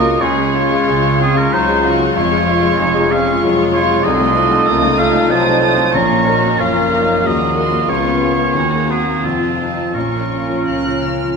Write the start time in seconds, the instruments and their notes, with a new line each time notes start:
Already playing: double bass section C#2, grand piano C#2 G#3 A#3 F4 A#4, cello section C#3, french horn section A#3 F4, viola section A#3 F4, clarinet F#4, violin section A#4 C#6, oboe D#5
0.05 grand piano A#3
0.20 grand piano C#2, double bass section C#2, cello section C#3, french horn section G#3 F4, clarinet F4, violin section G#4, oboe C#5
0.37 grand piano G#3
0.54 viola section G#3 F4, grand piano F4, violin section F4 C#6
0.72 grand piano G#3
0.87 double bass section C#2, cello section C#3, grand piano G#4
1.03 grand piano G#3
1.20 viola section G#3 F4, clarinet C4, grand piano F4, oboe G#4, violin section C#6
1.35 grand piano G#3, clarinet C#4, oboe A#4
1.52 double bass section C#2, cello section C#3, grand piano F#3, clarinet D#4, violin section F4, oboe C5
1.69 grand piano G#3
1.83 viola section G#3 F4, grand piano F4, violin section F#4 C#6
2.00 grand piano G#3
2.14 double bass section F1, grand piano F2, cello section F2, viola section G#3 F4, violin section F4 C#6, clarinet F4, oboe C#5
2.31 grand piano G#3
2.46 viola section G#3 F4, grand piano F4, violin section C#6
2.63 grand piano G#3
2.79 double bass section F1, cello section F2, violin section D#4, grand piano G#4
2.95 grand piano G#3
3.10 viola section G#3 F4, violin section C#4 C#6, grand piano F4, clarinet G#4, oboe F5
3.28 grand piano G#3
3.42 double bass section F1, cello section F2, grand piano F#3, violin section F4
3.59 grand piano G#3
3.73 viola section G#3 F4, clarinet F4, grand piano F4, oboe C#5, violin section C#6
3.90 grand piano G#3
4.04 double bass section C2, grand piano C2, cello section C3, french horn section A3 F4, viola section C4 D#4, violin section D#4 C6, clarinet A4, oboe D#5
4.21 grand piano A3
4.36 grand piano F4, violin section F#4
4.51 grand piano A3
4.67 double bass section C#2, cello section C#3, viola section A#3, violin section F4 D#6, grand piano A4
4.82 grand piano A3
4.98 viola section A3, grand piano F4, clarinet A4, oboe F5
5.13 grand piano A3
5.29 double bass section C2, cello section C3, grand piano F#3, viola section C4, violin section D#4 D#6, clarinet C5, oboe A5
5.45 grand piano A3
5.63 grand piano F4, violin section D#6
5.78 grand piano A3
5.94 double bass section A#1, grand piano A#1, cello section A#2, timpani A#2, french horn section A#3 C#4, viola section C#4 F4, violin section C#4 C#6, clarinet C#5, oboe A#5
6.09 grand piano A#3
6.26 violin section D#4, viola section F#4, grand piano A#4
6.42 grand piano A#3
6.59 double bass section F#1, cello section F#2, viola section F4, violin section F4 A#5, grand piano A#4, clarinet A#4, oboe F5
6.74 grand piano A#3
6.90 viola section D#4, grand piano A#4
7.07 grand piano A#3
7.23 double bass section D#2, cello section D#2, grand piano G#3, viola section A#3 F4, violin section F#4 A#5, clarinet F#4, oboe D#5
7.40 grand piano A#3
7.56 grand piano A#4, violin section C6
7.72 grand piano A#3
7.88 grand piano C#2, double bass section C#2, cello section C#2, french horn section B3 F4, violin section F4 C#6, clarinet F4, oboe C#5
8.05 grand piano B3
8.21 grand piano G#4
8.39 grand piano B3
8.55 grand piano D#2, double bass section D#2, cello section D#2, viola section A#3 F#4, french horn section A#3 F#4, violin section G#4 A#5
8.72 grand piano A#3
8.88 viola section C4, clarinet C4, grand piano F#4, violin section F#4, oboe G#4
9.07 grand piano A#3
9.23 double bass section F1, grand piano F2, cello section F2, clarinet C4, french horn section C4 F4, viola section F4, violin section F4 A5, oboe A4
9.40 grand piano F3
9.59 violin section D#4, grand piano F4
9.77 grand piano F3
9.94 double bass section A#1, timpani A#2, grand piano A#2, cello section A#2, clarinet C#4, french horn section C#4 F4, violin section C#4 C#6, viola section C#4 F4, oboe A#4
10.13 grand piano F3
10.31 grand piano F4
10.50 grand piano F3
10.66 double bass section C#2, cello section C#3, grand piano F4, violin section F#6
10.85 grand piano F3
11.02 grand piano F4, violin section F6
11.21 grand piano F3